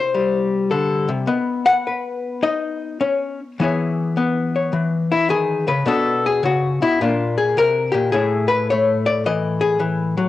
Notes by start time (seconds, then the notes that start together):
Already playing: C3 E4 C5
0.14 G3
0.71 D3 A4
1.09 C3
1.27 B3 D#5
1.66 F#5
1.87 B4
2.43 D#4 D#5
3.01 C#4
3.60 E3 B3 E4 G#4 C#5
4.17 B3
4.56 C#5
4.73 E3
5.12 E4
5.29 D#3 G#4
5.68 C#3 B4
5.86 B2 B3 D4 F#4 A4
6.26 G#4
6.43 C#3 F#4
6.82 B2 E4
7.01 A#2 A#3 D4 F4
7.38 G#4
7.57 C3 A#4
7.92 A#2 G4
8.12 A2 A3 E4 G#4
8.48 B4
8.70 A3 C#5
9.06 D5
9.26 E3 D#5
9.61 G#4
9.80 E3
10.17 F#3